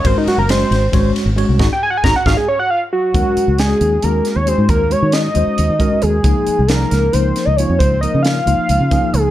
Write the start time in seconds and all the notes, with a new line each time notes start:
0.04 G#1 G#3 C#4 F#4 A#4 C5, kick, ride
0.18 D#4
0.27 F#4, muted fingered electric bass stroke, snare, ride
0.38 F#1 A#4
0.49 G#3 C#4 F#4 C5 D#5, snare, ride
0.71 G#1, snare, ride
0.92 G#1 G#3 C#4 F#4 C#5, kick, snare, ride
1.16 snare, ride
1.26 G#1
1.36 G#3 C#4 F#4 C#5, ride
1.49 C2
1.59 G#1 D#4 F#4 G#4, kick, snare
1.73 G5
1.83 G#5
1.90 F#5
1.97 G#5
2.04 G#1 D#4 F#4 G#4 A#5, kick, snare
2.16 F#5
2.26 G#1 D#4 F#4 G#4 F5, kick, snare
2.37 G#4
2.48 C#5
2.59 F#5
2.70 F5
2.93 F#4
3.14 D#2 G#3 C#4 F#4 A#4, kick, closed hi-hat
3.37 muted fingered electric bass stroke, closed hi-hat
3.48 C#2
3.58 G#3 C#4 F#4 G#4, snare, closed hi-hat
3.81 D#2, closed hi-hat
4.02 D#2 G#3 C#4 F#4 G#4 A#4, closed hi-hat
4.25 snare, closed hi-hat
4.36 D#2 C#5
4.46 G#3 C#4 F#4 G#4 C5, closed hi-hat
4.58 G#2
4.69 D#2 A#4, kick, closed hi-hat
4.90 G#3 C#4 F#4 C#5, closed hi-hat
5.02 D#3
5.12 D#5, snare, closed hi-hat
5.34 D#2 G#3 C#4 F#4 C5, closed hi-hat
5.47 muted fingered electric bass stroke
5.58 D#2, closed hi-hat
5.69 D#3
5.79 G#3 C#4 F#4 A#4, kick, closed hi-hat
5.92 muted fingered electric bass stroke
6.02 D#2 G#4, closed hi-hat
6.22 C#2 F3 A#3 D#4 G#4, kick, closed hi-hat
6.47 muted fingered electric bass stroke, closed hi-hat
6.59 C2
6.68 F3 A#3 D#4 G#4 A#4, snare, closed hi-hat
6.91 C#2 A#4, snare, closed hi-hat
7.12 C#2 F3 A#3 D#4 A#4 C5, closed hi-hat
7.36 snare, closed hi-hat
7.45 C#2 D#5
7.56 F3 A#3 D#4 F4 C#5, closed hi-hat
7.70 F2
7.79 C#2 C5, kick, closed hi-hat
8.01 F3 A#3 D#4 A#4 D#5, closed hi-hat
8.14 C#3
8.23 F5, snare, closed hi-hat
8.46 C#2 F3 A#3 D#4 F4, closed hi-hat
8.69 C#2, closed hi-hat
8.81 C#3
8.90 F3 A#3 D#4 G#4, kick, closed hi-hat
9.03 muted fingered electric bass stroke
9.13 C#2 G#4, closed hi-hat